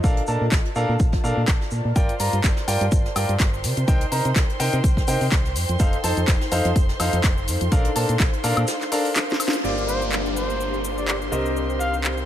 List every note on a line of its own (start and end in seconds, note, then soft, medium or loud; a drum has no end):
0.00 0.21 A#1 medium
0.00 0.20 D4 medium
0.00 4.41 F4 medium
0.00 0.20 A4 medium
0.00 0.20 A#4 medium
0.00 0.81 C5 medium
0.00 0.20 F5 loud
0.00 2.64 A5 medium
0.00 kick loud
0.00 shaker medium
0.09 5.56 A#4 medium
0.17 closed hi-hat soft
0.27 0.37 A#2 medium
0.27 0.44 D4 medium
0.27 0.44 A4 medium
0.27 0.44 A#4 medium
0.27 0.44 A5 medium
0.27 shaker medium
0.41 0.48 A#2 medium
0.52 0.61 A#1 medium
0.52 kick loud
0.52 snare loud
0.52 clap loud
0.52 shaker medium
0.65 4.41 D5 medium
0.65 closed hi-hat soft
0.75 0.85 A#2 medium
0.75 0.92 D4 medium
0.75 0.92 A4 medium
0.75 0.92 A#4 medium
0.75 0.92 F5 loud
0.75 shaker medium
0.89 0.96 A#2 loud
0.99 1.17 A#1 medium
0.99 kick loud
0.99 shaker medium
1.12 kick medium
1.12 snare soft
1.24 1.33 A#2 medium
1.24 1.40 D4 medium
1.24 1.40 A4 medium
1.24 1.40 A#4 medium
1.24 1.40 F5 medium
1.24 shaker medium
1.37 1.44 A#2 loud
1.47 1.57 A#1 medium
1.47 kick loud
1.47 snare loud
1.47 clap loud
1.47 shaker medium
1.61 snare soft
1.71 1.81 A#2 medium
1.71 shaker medium
1.85 1.92 A#2 medium
1.96 2.13 G1 medium
1.96 2.12 F4 medium
1.96 2.12 A#4 medium
1.96 9.63 C5 medium
1.96 2.12 D5 medium
1.96 2.12 G5 loud
1.96 9.63 C6 medium
1.96 kick loud
1.96 closed hi-hat medium
1.96 cabasa soft
1.96 shaker medium
2.09 closed hi-hat soft
2.09 cabasa soft
2.20 2.29 G2 medium
2.20 2.36 F4 medium
2.20 2.36 A#4 medium
2.20 2.36 D5 medium
2.20 2.36 A#5 medium
2.20 open hi-hat loud
2.20 cabasa medium
2.20 shaker medium
2.33 2.40 G2 medium
2.33 closed hi-hat soft
2.33 cabasa soft
2.44 2.53 G1 medium
2.44 kick loud
2.44 snare loud
2.44 clap loud
2.44 closed hi-hat medium
2.44 cabasa soft
2.44 shaker medium
2.57 snare medium
2.57 cabasa soft
2.68 2.77 G2 medium
2.68 2.84 F4 medium
2.68 2.84 A#4 medium
2.68 2.84 D5 medium
2.68 2.84 G5 loud
2.68 open hi-hat loud
2.68 cabasa medium
2.68 shaker medium
2.72 6.43 G5 medium
2.81 2.88 G2 loud
2.81 closed hi-hat soft
2.81 cabasa soft
2.92 3.09 G1 medium
2.92 kick loud
2.92 closed hi-hat medium
2.92 cabasa soft
2.92 shaker medium
3.06 snare soft
3.06 cabasa soft
3.16 3.25 G2 loud
3.16 3.32 F4 medium
3.16 3.32 A#4 medium
3.16 3.32 D5 medium
3.16 3.32 G5 medium
3.16 open hi-hat loud
3.16 cabasa medium
3.16 high woodblock medium
3.16 shaker medium
3.29 3.36 G2 medium
3.29 closed hi-hat soft
3.29 cabasa soft
3.39 3.65 G1 medium
3.39 kick loud
3.39 snare loud
3.39 clap loud
3.39 closed hi-hat medium
3.39 cabasa soft
3.39 shaker medium
3.54 cabasa soft
3.64 3.73 C3 loud
3.64 7.72 D#4 medium
3.64 open hi-hat loud
3.64 cabasa medium
3.64 shaker medium
3.77 3.84 C3 medium
3.77 closed hi-hat medium
3.77 cabasa soft
3.88 4.05 C2 loud
3.88 4.04 D#4 medium
3.88 4.04 A#4 medium
3.88 4.04 C5 medium
3.88 4.04 G5 loud
3.88 kick loud
3.88 closed hi-hat medium
3.88 cabasa soft
3.88 shaker medium
4.01 8.49 C5 medium
4.01 closed hi-hat soft
4.01 cabasa soft
4.12 4.21 C3 medium
4.12 4.28 D#4 medium
4.12 4.28 A#4 medium
4.12 4.28 C5 medium
4.12 4.28 A#5 medium
4.12 open hi-hat medium
4.12 cabasa medium
4.25 4.33 C3 medium
4.25 closed hi-hat medium
4.25 cabasa soft
4.36 4.45 C2 medium
4.36 kick loud
4.36 snare loud
4.36 clap loud
4.36 closed hi-hat medium
4.36 cabasa soft
4.36 shaker medium
4.50 closed hi-hat soft
4.50 cabasa soft
4.60 4.69 C3 medium
4.60 4.76 D#4 medium
4.60 4.76 A#4 medium
4.60 4.76 C5 medium
4.60 4.76 G5 loud
4.60 open hi-hat loud
4.60 cabasa medium
4.60 shaker medium
4.73 4.81 C3 loud
4.73 closed hi-hat soft
4.73 cabasa soft
4.84 5.01 C2 medium
4.84 kick loud
4.84 closed hi-hat medium
4.84 cabasa soft
4.84 shaker medium
4.97 kick medium
4.97 snare soft
4.97 cabasa soft
5.07 5.17 C3 loud
5.07 5.24 D#4 medium
5.07 5.24 A#4 medium
5.07 5.24 C5 medium
5.07 5.24 G5 medium
5.07 open hi-hat medium
5.07 cabasa medium
5.07 shaker medium
5.21 5.28 C3 medium
5.21 open hi-hat medium
5.21 cabasa soft
5.32 5.57 C2 medium
5.32 kick loud
5.32 snare loud
5.32 clap loud
5.32 closed hi-hat medium
5.32 cabasa soft
5.32 shaker medium
5.45 snare soft
5.45 cabasa soft
5.56 5.65 F2 loud
5.56 open hi-hat loud
5.56 cabasa medium
5.56 shaker medium
5.69 5.76 F2 medium
5.69 closed hi-hat medium
5.69 cabasa soft
5.79 5.97 F1 medium
5.79 5.96 D#4 medium
5.79 5.96 A4 medium
5.79 5.96 C5 medium
5.79 5.96 F5 loud
5.79 kick loud
5.79 closed hi-hat medium
5.79 cabasa soft
5.79 shaker medium
5.88 7.72 A4 medium
5.93 closed hi-hat soft
5.93 cabasa soft
6.04 6.13 F2 medium
6.04 6.20 D#4 medium
6.04 6.20 A4 medium
6.04 6.20 C5 medium
6.04 6.20 A5 medium
6.04 open hi-hat loud
6.04 cabasa medium
6.04 shaker medium
6.17 6.24 F2 medium
6.17 closed hi-hat medium
6.17 cabasa soft
6.27 6.37 F1 medium
6.27 kick loud
6.27 snare loud
6.27 clap loud
6.27 closed hi-hat medium
6.27 cabasa soft
6.27 shaker medium
6.41 snare soft
6.41 cabasa soft
6.49 6.61 F2 medium
6.49 6.68 D#4 medium
6.49 6.68 A4 medium
6.49 6.68 C5 medium
6.49 11.96 F5 medium
6.49 6.68 F5 loud
6.49 open hi-hat medium
6.49 cabasa medium
6.49 shaker medium
6.65 6.72 F2 loud
6.65 closed hi-hat soft
6.65 closed hi-hat medium
6.65 cabasa soft
6.76 6.93 F1 medium
6.76 kick loud
6.76 closed hi-hat medium
6.76 cabasa soft
6.76 shaker medium
6.89 snare soft
6.89 cabasa soft
7.00 7.09 F2 loud
7.00 7.16 D#4 medium
7.00 7.16 A4 medium
7.00 7.16 C5 medium
7.00 7.16 F5 medium
7.00 open hi-hat loud
7.00 cabasa medium
7.00 high woodblock medium
7.00 shaker medium
7.13 7.20 F2 medium
7.13 closed hi-hat medium
7.13 cabasa soft
7.23 7.49 F1 medium
7.23 kick loud
7.23 snare loud
7.23 clap loud
7.23 closed hi-hat medium
7.23 cabasa soft
7.23 shaker medium
7.38 cabasa soft
7.48 7.57 F2 loud
7.48 open hi-hat loud
7.48 cabasa medium
7.48 shaker medium
7.61 7.69 F2 medium
7.61 closed hi-hat medium
7.61 cabasa soft
7.72 7.89 A#1 loud
7.72 11.32 D4 medium
7.72 7.88 D4 medium
7.72 7.88 A4 medium
7.72 7.88 A#4 medium
7.72 7.88 F5 loud
7.72 kick loud
7.72 closed hi-hat medium
7.72 cabasa soft
7.72 shaker medium
7.84 closed hi-hat soft
7.84 cabasa soft
7.95 8.05 A#2 medium
7.95 8.12 D4 medium
7.95 8.12 A4 medium
7.95 12.25 A#4 medium
7.95 8.12 A#4 medium
7.95 8.12 A5 medium
7.95 open hi-hat loud
7.95 cabasa medium
8.09 8.17 A#2 medium
8.09 closed hi-hat medium
8.09 cabasa soft
8.20 8.29 A#1 medium
8.20 kick loud
8.20 snare loud
8.20 clap loud
8.20 closed hi-hat medium
8.20 cabasa soft
8.20 shaker medium
8.33 closed hi-hat soft
8.33 cabasa soft
8.44 8.53 A#2 medium
8.44 8.60 D4 medium
8.44 8.60 A4 medium
8.44 8.60 A#4 medium
8.44 8.60 F5 loud
8.44 open hi-hat loud
8.44 cabasa medium
8.44 shaker medium
8.57 8.64 A#2 loud
8.57 closed hi-hat medium
8.57 cabasa soft
8.57 high woodblock medium
8.67 snare loud
8.67 closed hi-hat medium
8.67 cabasa soft
8.67 shaker medium
8.81 snare medium
8.81 clap soft
8.81 cabasa soft
8.92 9.08 D4 medium
8.92 9.08 A4 medium
8.92 9.08 A#4 medium
8.92 9.08 F5 medium
8.92 open hi-hat medium
8.92 cabasa medium
8.92 shaker medium
9.05 open hi-hat medium
9.05 cabasa soft
9.15 snare medium
9.15 clap loud
9.15 closed hi-hat medium
9.15 cabasa soft
9.15 shaker medium
9.30 snare medium
9.30 cabasa soft
9.40 open hi-hat loud
9.40 cabasa medium
9.40 high woodblock medium
9.40 shaker medium
9.48 snare loud
9.53 closed hi-hat medium
9.53 cabasa soft
9.64 11.30 G1 medium
9.64 11.29 A#3 medium
9.64 11.29 F4 medium
9.64 11.29 G4 medium
9.64 12.25 C5 medium
9.64 11.29 D5 medium
9.64 12.25 C6 medium
9.64 downlifter medium
9.64 cabasa soft
9.72 12.09 G4 medium
9.78 cabasa soft
9.88 10.05 C5 medium
9.88 cabasa medium
10.02 cabasa soft
10.12 clap loud
10.12 cabasa soft
10.26 cabasa soft
10.36 10.84 C5 medium
10.36 cabasa medium
10.50 cabasa soft
10.61 cabasa soft
10.74 cabasa soft
10.85 cabasa medium
10.97 11.04 D5 medium
10.97 cabasa soft
11.08 11.16 D5 medium
11.08 clap loud
11.08 cabasa soft
11.22 cabasa soft
11.32 12.25 C2 medium
11.32 12.25 C4 medium
11.32 12.25 D#4 medium
11.32 12.25 G4 medium
11.32 12.25 A#4 medium
11.32 12.25 D#5 medium
11.32 cabasa medium
11.46 12.25 C5 medium
11.46 cabasa soft
11.57 cabasa soft
11.70 cabasa soft
11.80 11.97 F5 medium
11.80 cabasa medium
11.94 cabasa soft
12.04 clap loud
12.04 cabasa soft
12.18 12.25 G5 medium
12.18 cabasa soft